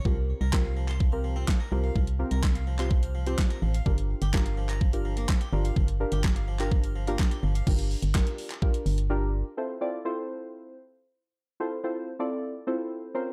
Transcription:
<<
  \new Staff \with { instrumentName = "Synth stab" } { \time 4/4 \key f \major \tempo 4 = 126 <c' f' g' bes'>8. r16 <c' f' g' bes'>4 r16 <c' f' g' bes'>4 r16 <c' f' g' bes'>8~ | <c' f' g' bes'>16 r16 <c' f' g' bes'>4 r16 <c' f' g' c''>8. r16 <c' f' g' c''>4 r16 | <d' f' g' bes'>8. r16 <d' f' g' bes'>4 r16 <d' f' g' bes'>4 r16 <d' f' g' bes'>8~ | <d' f' g' bes'>16 r16 <d' f' g' bes'>4 r16 <d' f' g' bes'>8. r16 <d' f' g' bes'>4 r16 |
<d' f' g' bes'>8. r16 <d' f' g' bes'>8. r16 <d' f' g' bes'>8. r16 <d' f' g' bes'>8. r16 | <c' e' f' a' c''>16 r16 <c' e' f' a' d''>16 r16 <c' e' f' a' c''>4. r4. | r16 <c' e' f' a' c''>16 r16 <c' e' f' a' c''>8 r16 <c' e' f' a' d''>8. r16 <c' e' f' a' c''>4 <c' des' f' bes' c''>8 | }
  \new Staff \with { instrumentName = "Harpsichord" } { \time 4/4 \key f \major f16 r8 bes'16 r16 f''16 f16 c'''16 f16 f'''16 f16 c'16 f16 bes'16 f16 f''16 | f16 r8 bes'16 r16 f''16 f16 c'''16 f16 f'''16 f16 c'16 f16 bes'16 f16 f''16 | f16 r8 g'16 r16 f''16 f16 bes''16 f16 f'''16 f16 bes16 f16 g'16 f16 f''16 | f16 r8 g'16 r16 f''16 f16 bes''16 f16 f'''16 f16 bes16 r16 g'16 f16 f''16 |
r1 | r1 | r1 | }
  \new Staff \with { instrumentName = "FM bass" } { \clef bass \time 4/4 \key f \major c,8. c,2~ c,8. c,8 | c,8. c,2~ c,8. a,,8 | g,,8. g,,2~ g,,8. g,,8 | g,,8. g,,2~ g,,8. g,,8 |
g,,8. g,,8 r4 r16 g,,4. | r1 | r1 | }
  \new DrumStaff \with { instrumentName = "Drums" } \drummode { \time 4/4 bd4 <hc bd sn>8. hc16 bd4 <hc bd sn>4 | bd16 hh8 hh16 <hc bd sn>16 hh8 <hc hh>16 bd16 hh8 hh16 <hc bd sn>16 hh8 hh16 | bd16 hh8 hh16 <hc bd sn>16 hh8 <hc hh>16 bd16 hh8 hh16 <hc bd sn>16 hh8 hh16 | bd16 hh8 hh16 <hc bd sn>16 hh8 <hc hh>16 bd16 hh8 hh16 <hc bd sn>16 hh8 hh16 |
<cymc bd>16 hh16 hho16 hh16 <hc bd sn>16 hh16 hho16 <hc hh>16 bd16 hh16 hho16 hh16 r4 | r4 r4 r4 r4 | r4 r4 r4 r4 | }
>>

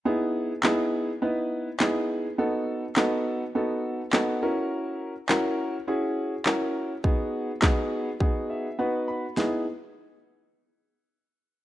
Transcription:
<<
  \new Staff \with { instrumentName = "Grand piano" } { \time 4/4 \key e \major \tempo 4 = 103 << { r1 | r1 | r1 | r2 r8 e''8 fis''8 b''8 |
r1 | } \\ { <b dis' e' gis'>4 <b dis' e' gis'>4 <b dis' e' b'>4 <b dis' e' gis'>4 | <b dis' fis' a'>4 <b dis' fis' a'>4 <b dis' fis' a'>4 <b dis' fis' a'>8 <cis' e' fis' ais'>8~ | <cis' e' fis' ais'>8 r8 <cis' e' fis' ais'>4 <cis' e' fis' gis'>4 <cis' e' fis' ais'>4 | <b dis' fis' gis'>4 <b dis' fis' gis'>4 <b dis' fis' gis'>4 <b dis' fis' b'>4 |
<b dis' e' gis'>8 r2. r8 | } >> }
  \new DrumStaff \with { instrumentName = "Drums" } \drummode { \time 4/4 r4 <hc sn>4 r4 <hc sn>4 | r4 <hc sn>4 r4 <hc sn>4 | r4 <hc sn>4 r4 <hc sn>4 | bd4 <hc bd sn>4 bd4 r4 |
sn4 r4 r4 r4 | }
>>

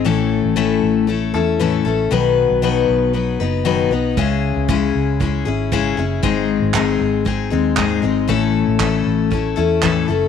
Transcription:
<<
  \new Staff \with { instrumentName = "Steel-string acoustic guitar" } { \time 4/4 \key a \lydian \tempo 4 = 116 <a, e a cis' e' a'>4 <a, e a cis' e' a'>4 <a cis' e' a'>8 <a cis' e' a'>8 <a, e a cis' e' a'>8 <a cis' e' a'>8 | <b, dis fis b dis' b'>4 <b, dis fis b dis' b'>4 <fis b dis' b'>8 <fis b dis' b'>8 <b, dis fis b dis' b'>8 <fis b dis' b'>8 | <cis gis cis' e' gis'>4 <cis gis cis' e' gis'>4 <gis cis' e' gis'>8 <cis' e' gis'>8 <cis gis cis' e' gis'>8 <cis' e' gis'>8 | <gis, dis gis bis dis' gis'>4 <gis, dis gis bis dis' gis'>4 <gis bis dis' gis'>8 <gis bis dis' gis'>8 <gis, dis gis bis dis' gis'>8 <gis bis dis' gis'>8 |
<a, e a cis' e' a'>4 <a, e a cis' e' a'>4 <a cis' e' a'>8 <a cis' e' a'>8 <a, e a cis' e' a'>8 <a cis' e' a'>8 | }
  \new Staff \with { instrumentName = "Fingered electric bass" } { \clef bass \time 4/4 \key a \lydian a,,8. a,,8. a,,4 e,4 a,,8 | b,,8. b,,8. b,,4 fis,,4 b,,8 | cis,8. cis,8. cis,4 gis,,4 fis,,8 | gis,,8. gis,,8. gis,,4 dis,4 gis,,8 |
a,,8. a,,8. a,,4 e,4 fis,,8 | }
  \new DrumStaff \with { instrumentName = "Drums" } \drummode { \time 4/4 r4 r4 r4 r4 | r4 r4 r4 r4 | bd4 bd4 bd4 bd4 | bd4 <hc bd>4 bd4 <hc bd>4 |
bd4 <hc bd>4 bd4 <hc bd>4 | }
>>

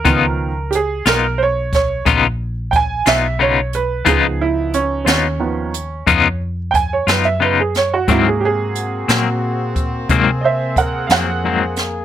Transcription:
<<
  \new Staff \with { instrumentName = "Upright piano" } { \time 12/8 \key aes \dorian \tempo 4. = 60 bes'4 <g' aes'>8 bes'8 <c'' des''>8 des''8 r4 <g'' aes''>8 fes''8 des''8 ces''8 | aes'8 fes'8 des'8 <c' des'>2 r8 <g'' aes''>16 des''16 ces''16 fes''16 ces''16 aes'16 des''16 ges'16 | fes'16 aes'16 <g' aes'>2 r4 <c'' ees'' fes''>8 <bes' ges''>8 <f'' ges''>4 r8 | }
  \new Staff \with { instrumentName = "Upright piano" } { \clef bass \time 12/8 \key aes \dorian <ees f ces'>8 r1 r4. | <f ces' ees'>4. r8 <ees f ces'>8 r2. r8 | <c bes ges'>1. | }
  \new Staff \with { instrumentName = "Horn section" } { \time 12/8 \key aes \dorian << { r1. | r1. | ges'2. aes'2. | } \\ { r1. | r1. | <bes c'>1. | } >> }
  \new Staff \with { instrumentName = "Clean electric guitar" } { \time 12/8 \key aes \dorian <des ces' ees' f'>8 r4 <ces' ees' f'>8 r4 <des ces' ees' f'>8 r4 <ces' ees' f'>8 <des ces' ees' f'>8 r8 | <des ces' ees' f'>8 r4 <ces' ees' f'>8 r4 <des ces' ees' f'>8 r4 <ces' ees' f'>8 <des ces' ees' f'>8 r8 | <aes, ges bes c'>8 r4 <ges bes c'>8 r4 <aes, ges bes c'>8 r4 <ges bes c'>8 <aes, ges bes c'>8 r8 | }
  \new Staff \with { instrumentName = "Fingered electric bass" } { \clef bass \time 12/8 \key aes \dorian des,4. ces,4. bes,,4. ces,4. | des,4. ees,4. f,4. ges,4. | aes,4. bes,4. c4. f,4. | }
  \new DrumStaff \with { instrumentName = "Drums" } \drummode { \time 12/8 <hh bd>4 hh8 <hh sn>4 <hh bd sn>8 <hh bd>4 <hh bd>8 <hh sn>4 hh8 | <hh bd>4 hh8 <hh sn>4 hh8 <hh bd>4 <hh bd>8 <hh sn>4 <hh sn>8 | <hh bd>4 hh8 <hh sn>4 <hh bd>8 <hh bd>4 <hh bd>8 <hh sn>4 <hh sn>8 | }
>>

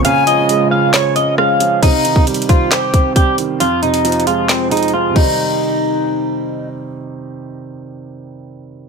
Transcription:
<<
  \new Staff \with { instrumentName = "Flute" } { \time 4/4 \key c \phrygian \tempo 4 = 135 aes''4 r2. | r1 | r1 | r1 |
r1 | }
  \new Staff \with { instrumentName = "Clean electric guitar" } { \time 4/4 \key c \phrygian f''8 ees''4 f''8 des''8 ees''8 f''4 | ees'4 r8 f'8 g'4 g'8 r8 | f'8 ees'4 f'8 c'8 ees'8 f'8 ees'8~ | ees'2. r4 |
r1 | }
  \new Staff \with { instrumentName = "Analog synth pad" } { \clef bass \time 4/4 \key c \phrygian <des aes f'>1 | r1 | r1 | r1 |
r1 | }
  \new Staff \with { instrumentName = "Grand piano" } { \clef bass \time 4/4 \key c \phrygian des8 f8 aes8 des'8 des''8 des'8 aes8 f8 | c8 ees8 g8 c'8 c''8 c'8 g8 ees8 | f,8 c8 f8 aes8 c'8 aes8 f8 <c ees g c'>8~ | <c ees g c'>1~ |
<c ees g c'>1 | }
  \new DrumStaff \with { instrumentName = "Drums" } \drummode { \time 4/4 hh8 hh8 hh4 <hc hh sn>8 hh8 ss8 hh8 | <cymc hh bd>8 hh16 bd16 \tuplet 3/2 { hh16 hh16 hh16 <hh bd>16 r16 r16 } <hc hh sn>8 <hh bd>8 <hh bd>8 hh8 | hh8 hh16 hh16 \tuplet 3/2 { hh16 hh16 hh16 hh16 r16 r16 } <hc hh sn>8 hh32 hh32 hh32 hh32 r8 <cymc bd>8 | r4 r4 r4 r4 |
r4 r4 r4 r4 | }
>>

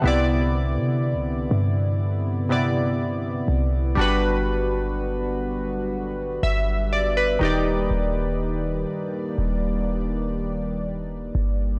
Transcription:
<<
  \new Staff \with { instrumentName = "Synth keys" } { \time 4/4 \key c \lydian \tempo 4 = 61 << { r1 | r2 r8 e''8 d''16 b'8 r16 | r1 | } \\ { <c b e' d''>2~ <c b e' d''>8 <c b e' d''>4. | <g d' fis' b'>2.~ <g d' fis' b'>8 <ees ees' g' d''>8~ | <ees ees' g' d''>2.~ <ees ees' g' d''>8 r8 | } >> }
  \new Staff \with { instrumentName = "Analog synth pad" } { \clef bass \time 4/4 \key c \lydian << { <c d e'>1 | <d fis'>2.~ <d fis'>8 <ees bes d''>8~ | <ees bes d''>1 | } \\ { b1 | g1~ | g1 | } >> }
  \new Staff \with { instrumentName = "808-style bass" } { \clef bass \time 4/4 \key c \lydian c,8. c16. c,16. g,2 c,8 | g,,2~ g,,8 g,,4 ees,,8 | ees,,4 r8 ees,,2 g,,8 | }
>>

